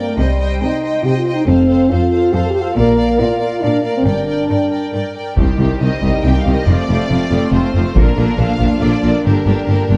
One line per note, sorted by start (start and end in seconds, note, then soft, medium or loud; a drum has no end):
0.00 0.12 G2 soft
0.00 0.19 A#4 soft
0.00 0.19 D5 soft
0.00 0.16 G5 soft
0.09 0.20 A3 soft
0.18 0.55 C2 soft
0.18 0.55 C3 medium
0.18 0.62 G3 soft
0.18 0.41 C5 soft
0.18 0.39 D#5 soft
0.18 0.39 G5 soft
0.40 0.62 C5 soft
0.40 0.60 D#5 soft
0.40 0.62 G5 soft
0.62 0.98 C3 soft
0.62 1.05 D#4 soft
0.62 0.82 C5 soft
0.62 0.83 D#5 soft
0.62 0.84 G5 soft
0.83 1.05 C5 soft
0.83 1.05 D#5 soft
0.83 1.04 G5 soft
1.04 1.41 C3 soft
1.04 1.19 G4 medium
1.04 1.25 C5 soft
1.04 1.26 D#5 soft
1.04 1.26 G5 soft
1.17 1.33 F4 soft
1.26 1.48 C5 soft
1.26 1.48 D#5 soft
1.26 1.48 G5 soft
1.35 1.48 D#4 soft
1.47 1.84 F1 soft
1.47 1.84 F2 soft
1.47 1.90 C4 medium
1.47 1.68 A4 soft
1.47 1.68 C5 soft
1.47 1.69 F5 soft
1.69 1.90 A4 soft
1.69 1.89 C5 soft
1.69 1.91 F5 soft
1.90 2.27 F2 soft
1.90 2.34 F4 medium
1.90 2.12 A4 soft
1.90 2.10 C5 soft
1.90 2.12 F5 soft
2.11 2.33 A4 soft
2.11 2.32 C5 soft
2.11 2.33 F5 soft
2.33 2.70 F2 medium
2.33 2.48 A4 medium
2.33 2.54 A4 soft
2.33 2.53 C5 soft
2.33 2.54 F5 soft
2.50 2.63 G4 medium
2.54 2.76 A4 soft
2.54 2.76 C5 soft
2.54 2.76 F5 soft
2.61 2.76 F4 medium
2.75 3.12 A#1 medium
2.75 3.12 A#2 medium
2.75 3.18 A#3 medium
2.75 2.97 A#4 soft
2.75 2.96 D5 soft
2.75 2.96 F5 soft
2.97 3.19 A#4 soft
2.97 3.17 D5 soft
2.97 3.19 F5 soft
3.18 3.56 A#2 medium
3.18 3.63 F4 medium
3.18 3.40 A#4 soft
3.18 3.38 D5 soft
3.18 3.40 F5 soft
3.39 3.62 A#4 soft
3.39 3.60 D5 soft
3.39 3.61 F5 soft
3.61 3.99 A#2 soft
3.61 3.84 D4 medium
3.61 3.83 A#4 soft
3.61 3.83 D5 soft
3.61 3.82 F5 soft
3.83 3.94 A#3 soft
3.83 4.05 A#4 soft
3.83 4.04 D5 soft
3.83 4.05 F5 soft
3.97 4.07 C4 soft
4.04 4.42 G1 soft
4.04 4.43 G2 soft
4.04 4.93 D4 medium
4.04 4.27 A#4 soft
4.04 4.27 D5 soft
4.04 4.26 G5 soft
4.27 4.49 A#4 soft
4.27 4.48 D5 soft
4.27 4.47 G5 soft
4.49 4.87 G2 soft
4.49 4.69 A#4 soft
4.49 4.70 D5 soft
4.49 4.70 G5 soft
4.70 4.92 A#4 soft
4.70 4.92 D5 soft
4.70 4.93 G5 soft
4.93 5.31 G2 soft
4.93 5.14 A#4 soft
4.93 5.15 D5 soft
4.93 5.15 G5 soft
5.15 5.37 A#4 soft
5.15 5.37 D5 soft
5.15 5.37 G5 soft
5.37 5.45 C2 soft
5.37 5.46 C2 soft
5.37 5.47 C2 soft
5.37 5.58 D#3 soft
5.37 5.59 G3 soft
5.37 6.63 G3 medium
5.37 5.58 C4 soft
5.37 6.63 D#4 soft
5.37 5.78 G4 soft
5.37 5.58 G4 soft
5.37 taiko medium
5.59 5.68 C2 soft
5.59 5.67 C2 soft
5.59 5.68 C2 soft
5.59 5.80 D#3 soft
5.59 5.80 G3 soft
5.59 5.80 C4 soft
5.59 5.80 G4 soft
5.81 5.89 C2 soft
5.81 5.90 C2 soft
5.81 6.02 D#3 soft
5.81 6.02 G3 soft
5.81 6.02 C4 soft
5.81 6.02 G4 soft
5.81 6.23 D#5 medium
6.02 6.11 C2 soft
6.02 6.22 D#3 soft
6.02 6.23 G3 soft
6.02 6.22 C4 soft
6.02 6.23 G4 soft
6.02 taiko soft
6.24 6.32 C2 soft
6.24 6.33 C2 soft
6.24 6.44 D#3 soft
6.24 6.44 G3 soft
6.24 6.44 C4 soft
6.24 6.44 G4 soft
6.24 6.39 G5 medium
6.39 6.53 F5 medium
6.45 6.55 C2 soft
6.45 6.67 D#3 soft
6.45 6.67 G3 soft
6.45 6.67 C4 soft
6.45 6.67 G4 soft
6.53 6.67 D#5 medium
6.67 6.75 F1 soft
6.67 6.76 F1 medium
6.67 6.76 F2 medium
6.67 6.88 F3 soft
6.67 6.88 A3 soft
6.67 7.92 A3 medium
6.67 7.92 C4 medium
6.67 6.88 C4 soft
6.67 6.89 F4 soft
6.67 7.53 D5 medium
6.88 6.97 F1 medium
6.88 6.97 F1 soft
6.88 6.96 F2 soft
6.88 7.10 F3 soft
6.88 7.09 A3 soft
6.88 7.10 C4 soft
6.88 7.10 F4 soft
7.10 7.18 F1 soft
7.10 7.18 F2 soft
7.10 7.30 F3 soft
7.10 7.30 A3 soft
7.10 7.31 C4 soft
7.10 7.31 F4 soft
7.31 7.39 F1 soft
7.31 7.40 F1 soft
7.31 7.40 F2 soft
7.31 7.52 F3 soft
7.31 7.52 A3 soft
7.31 7.52 C4 soft
7.31 7.52 F4 soft
7.52 7.61 F1 medium
7.52 7.61 F2 soft
7.52 7.73 F3 soft
7.52 7.74 A3 soft
7.52 7.74 C4 soft
7.52 7.74 F4 soft
7.52 7.94 C5 medium
7.74 7.82 F1 soft
7.74 7.83 F1 soft
7.74 7.83 F2 medium
7.74 7.95 F3 soft
7.74 7.95 A3 soft
7.74 7.96 C4 soft
7.74 7.95 F4 soft
7.94 8.04 A#1 medium
7.94 8.04 A#2 medium
7.94 8.16 D3 soft
7.94 9.19 F3 medium
7.94 8.16 A#3 medium
7.94 9.97 D4 medium
7.94 8.15 D4 soft
7.94 8.16 F4 medium
7.94 8.38 A#4 medium
7.94 taiko medium
8.16 8.25 A#1 medium
8.16 8.25 A#1 soft
8.16 8.25 A#2 soft
8.16 8.36 D3 medium
8.16 8.37 A#3 soft
8.16 8.37 D4 soft
8.16 8.37 F4 soft
8.37 8.45 A#1 medium
8.37 8.46 A#1 medium
8.37 8.46 A#2 soft
8.37 8.58 D3 soft
8.37 8.58 A#3 soft
8.37 8.58 D4 soft
8.37 8.58 F4 soft
8.37 8.81 F5 medium
8.59 8.67 A#1 soft
8.59 8.68 A#1 soft
8.59 8.68 A#2 soft
8.59 8.79 D3 soft
8.59 8.79 A#3 soft
8.59 8.80 D4 soft
8.59 8.80 F4 soft
8.59 taiko soft
8.80 8.89 A#1 soft
8.80 8.89 A#1 medium
8.80 8.89 A#2 medium
8.80 9.01 D3 soft
8.80 9.01 A#3 soft
8.80 9.01 D4 soft
8.80 9.01 F4 soft
8.80 9.24 D5 medium
9.02 9.11 A#1 soft
9.02 9.12 A#1 soft
9.02 9.11 A#2 soft
9.02 9.23 D3 soft
9.02 9.23 A#3 soft
9.02 9.23 D4 soft
9.02 9.24 F4 soft
9.24 9.33 G1 soft
9.24 9.34 G1 soft
9.24 9.32 G2 soft
9.24 9.46 D3 soft
9.24 9.97 G3 soft
9.24 9.46 A#3 soft
9.24 9.45 D4 soft
9.24 9.45 G4 soft
9.24 9.97 A#4 soft
9.45 9.54 G1 soft
9.45 9.55 G1 soft
9.45 9.55 G2 soft
9.45 9.66 D3 soft
9.45 9.67 A#3 soft
9.45 9.65 D4 soft
9.45 9.65 G4 soft
9.66 9.76 G1 soft
9.66 9.77 G1 soft
9.66 9.75 G2 soft
9.66 9.89 D3 soft
9.66 9.89 A#3 soft
9.66 9.87 D4 soft
9.66 9.88 G4 soft
9.89 9.97 G1 soft
9.89 9.97 G2 soft
9.89 9.97 D3 soft
9.89 9.97 A#3 soft
9.89 9.97 D4 soft
9.89 9.97 G4 soft